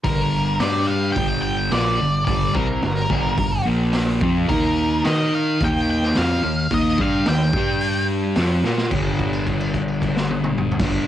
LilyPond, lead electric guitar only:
\new Staff \with { instrumentName = "Lead electric guitar" } { \time 4/4 \key g \minor \tempo 4 = 108 bes'4 d''8 f''8 g''8 g''8 d''4 | d''8 bes'8 bes'4. r4. | bes'4 ees''8 f''8 g''8 g''8 f''4 | ees''8 f''8 g''4. r4. |
r1 | }